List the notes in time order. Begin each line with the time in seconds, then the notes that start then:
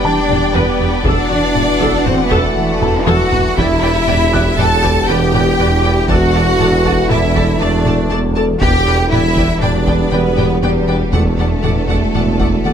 Already playing: E1 G3 B3 D4 G4 D5 G5
0.03 E3 D4 D5 A5
0.29 E1 E2 D4, taiko mid
0.53 E1 E2 B3 B4
0.79 E1 E2 G4
1.04 E1 E2 E3 D4 F#4 A4 D5 F#5, taiko
1.30 E1 E2 F#4
1.55 E1 E2 E4, taiko mid
1.80 E1 E2 A4, taiko
2.05 E1 E2 A3 C4 F#4 C5, taiko mid
2.23 B3 B4
2.30 E1 E2 A4, taiko
2.39 A3 A4
2.56 E3 A3 A4
2.81 E1 E2 E4 A4 A5, taiko low-mid
3.06 E1 E2 F#4 A4 F#5, taiko high
3.31 E1 E2 F#4, taiko low
3.57 E1 E2 E3 B3 D4 E4 G4 B4 D5 E5 G5, taiko
3.82 E2 B4 D5 G5
4.07 E1 E2 B4 D5 G5, taiko mid
4.32 E2 G4 B4 D5 G5 F#6, taiko
4.57 E1 E2 A4 B4 D5 G5 A5, taiko mid
4.83 E2 B4 D5 G5, taiko
5.08 E1 E2 E3 G4 B4 D5 G5
5.33 E2 B4 D5 G5, taiko mid
5.58 E1 E2 B4 D5 G5
5.83 E2 B4 D5 G5
6.08 E1 E2 A3 F#4 A4 D5 F#5 A5, taiko
6.33 E2 A4 D5 A5
6.59 E1 E2 A4 D5 A5, taiko mid
6.85 E2 A4 D5 A5, taiko
7.10 E1 E2 E4 A4 D5 E5 A5, taiko mid
7.35 E2 A4 D5 A5, taiko
7.60 E1 E2 E3 D4 A4 D5 A5
7.85 E2 A4 D5 A5, taiko mid
8.10 E1 E2 A4 D5 A5
8.35 E2 A4 D5 A5
8.61 E1 E2 G3 B3 D4 G4 B4 D5 G5, taiko
8.85 E2 B4 D5 G5
9.11 E1 E2 E4 B4 D5 E5 G5, taiko mid
9.36 E2 B4 D5 G5, taiko
9.62 E1 E2 D4 B4 D5 G5, taiko mid
9.86 E2 B4 D5 G5, taiko
10.11 E1 E2 E3 B3 B4 D5 G5
10.37 E2 B4 D5 G5, taiko mid
10.62 E1 E2 G3 B3 G4 B4 D5 G5
10.88 E2 B4 D5 G5
11.13 E1 E2 E3 A3 F#4 A4 D5 F#5, taiko
11.38 E2 A4 D5 F#5
11.62 E1 E2 A4 D5 F#5, taiko mid
11.88 E2 A4 D5 F#5, taiko
12.14 E1 E2 A4 D5 F#5, taiko mid
12.39 E2 A4 D5 F#5, taiko
12.64 E1 E2 E3 A4 D5 F#5